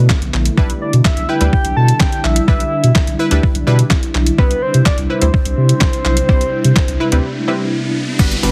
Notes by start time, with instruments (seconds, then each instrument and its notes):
Already playing: analog synth pad D3 A3 B3 E4, synth pluck A3 D4 F#4 B4
0.09 kick, snare, clap
0.22 sub bass B1, closed hi-hat
0.34 sub bass A#1, clap
0.46 closed hi-hat
0.57 sub bass B1, analog synth pad D3 G3 D4, synth pluck G3 D4 E4 B4, kick
0.70 closed hi-hat
0.81 soft synth lead D5
0.93 sub bass B2, closed hi-hat
1.04 soft synth lead E5, kick, snare, clap
1.17 sub bass B1, closed hi-hat
1.29 synth pluck E4 B4, soft synth lead G5
1.41 sub bass D2, synth pluck G3 D4 E4 B4, closed hi-hat
1.53 kick
1.65 sub bass B1, closed hi-hat
1.77 sub bass B2, soft synth lead A5
1.88 closed hi-hat
2.00 soft synth lead G5, kick, snare, clap
2.12 closed hi-hat
2.24 sub bass A#1, soft synth lead E5, clap
2.36 closed hi-hat
2.48 sub bass B1, synth pluck G3 D4 E4 B4, soft synth lead E5, kick
2.60 closed hi-hat
2.84 sub bass B2, closed hi-hat
2.95 kick, snare, clap
3.07 sub bass B1, closed hi-hat
3.19 synth pluck E4 B4
3.31 sub bass D2, synth pluck G3 D4 E4 B4, closed hi-hat
3.43 kick
3.55 sub bass B1, closed hi-hat
3.67 sub bass B2, synth pluck G3 D4 E4 B4
3.79 closed hi-hat
3.90 kick, snare, clap
4.03 closed hi-hat
4.15 sub bass B1, clap
4.26 closed hi-hat
4.38 sub bass C2, analog synth pad C3 G3, synth pluck G3 C4 E4 B4, soft synth lead B4, kick, riser
4.51 closed hi-hat
4.62 soft synth lead C5
4.74 sub bass C3, closed hi-hat
4.85 soft synth lead D5, kick, snare, clap
4.98 sub bass C2, closed hi-hat
5.10 synth pluck E4 B4, soft synth lead C5
5.22 sub bass D2, synth pluck G3 C4 E4 C5, closed hi-hat
5.34 kick
5.45 sub bass C2, closed hi-hat
5.58 sub bass C3
5.69 closed hi-hat
5.80 kick, snare, clap
5.93 closed hi-hat
6.05 sub bass B1, clap
6.17 closed hi-hat
6.29 sub bass C2, synth pluck G3 C4 E4 C5, kick
6.41 closed hi-hat
6.64 sub bass C3, closed hi-hat
6.76 kick, snare, clap
6.88 sub bass C2, closed hi-hat
7.00 synth pluck E4 B4
7.12 sub bass D2, synth pluck G3 C4 E4 B4, closed hi-hat
7.48 synth pluck G3 C4 E4 B4
8.19 sub bass G1, analog synth pad D3 G3 B3 F#4, synth pluck G3 B3 D4 F#4 B4, kick, crash, downlifter, shaker
8.31 closed hi-hat, shaker
8.43 sub bass G1, synth pluck G3 B3 D4 F#4 B4, soft synth lead B4, open hi-hat, shaker